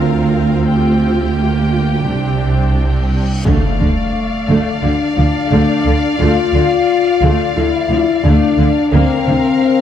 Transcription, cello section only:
Already playing: D2
2.10 C2
3.46 D3
3.80 D3
4.49 D3
4.83 D3
5.17 D3
5.52 D3
5.86 D3
6.20 D3
6.54 D3
7.22 D3
7.56 D3
7.91 D3
8.25 D3
8.59 D3
8.94 D3
9.28 D3

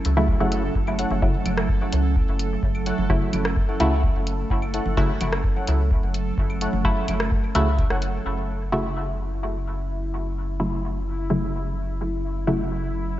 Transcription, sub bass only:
0.05 C#2
0.40 F#1
0.75 F#1
1.11 F#1
1.46 F#1
1.93 C#2
2.28 F#1
2.63 F#1
2.98 F#1
3.33 F#1
3.80 C#2
4.15 F#1
4.50 F#1
4.86 F#1
5.21 F#1
5.68 C#2
6.03 F#1
6.38 F#1
6.73 F#1
7.08 F#1
7.55 C#2
7.90 F#1
8.25 F#1

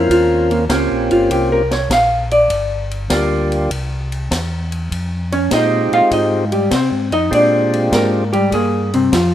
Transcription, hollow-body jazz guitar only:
0.11 F4
0.51 A#3
0.70 C#4
1.12 F4
1.31 G4
1.52 A#4
1.72 C#5
1.93 F5
2.32 D5
5.32 C#4 C#5
5.54 D#4 D#5
5.94 F4 F5
6.13 D#4 D#5
6.52 G3 G4
6.73 C4 C5
7.13 D#4 D#5
7.34 D4 D5
7.94 A#3 A#4
8.33 G3 G4
8.54 A#3 G#4
8.94 C3 C4
9.14 F3 F4

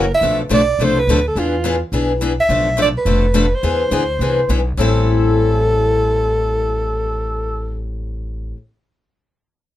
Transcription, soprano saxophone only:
Already playing: A#4
0.14 E5
0.54 D5
0.84 C5
0.99 B4
1.28 A4
1.39 F4
2.40 E5
2.82 D5
2.97 B4
3.55 C5
4.80 A4

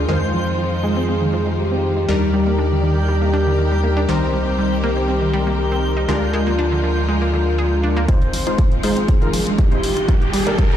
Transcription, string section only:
Already playing: F3 G#3 F4
0.09 D#3 C4
2.08 G3 A#3 G4 D5
4.08 D#3 C4
6.08 D3 F3 G#3 F4
8.09 D#3 F3 G#3 C4 F4
10.08 G3 A#3 G4 D5

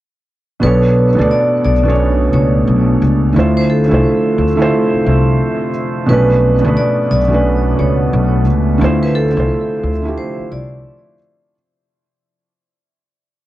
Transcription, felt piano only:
0.60 B2 B3 D4
0.65 A4 C#5
1.15 B2 B3 D4
1.20 A4 D5
1.83 B2 B3 C#4
1.88 A4 C#5
1.93 D4
3.33 D3 A3 E4
3.38 F4 C5
3.88 D3 A3 E4
3.92 F4 C5
4.56 D3 A3 E4
4.60 F4 C5
6.06 B2 A3 C#4
6.11 D4 B4
6.61 B2 A3 B3
6.66 D4 B4
7.28 B2 A3 C#4
7.33 D4 B4
8.78 D3 A3 E4
8.83 F4 C5
9.34 D3 A3 E4
9.38 F4 C5
10.02 D3 A3 E4
10.07 F4 G4

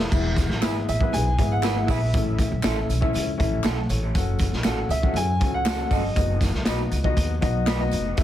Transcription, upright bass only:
0.11 E1
0.50 A1
0.63 G#1
0.89 A1
1.13 B1
1.38 G#1
1.88 A#1
2.14 A1
2.52 B1
2.64 A1
2.89 B1
3.15 C#2
3.40 A1
3.65 B1
3.90 A1
4.15 F#1
4.52 B1
4.64 A1
4.89 C#2
5.14 F#2
5.41 C#2
5.91 G1
6.16 F#1
6.53 C#2
6.66 B1
6.91 C#2
7.17 D#2
7.42 B1
7.92 F1
8.18 E1

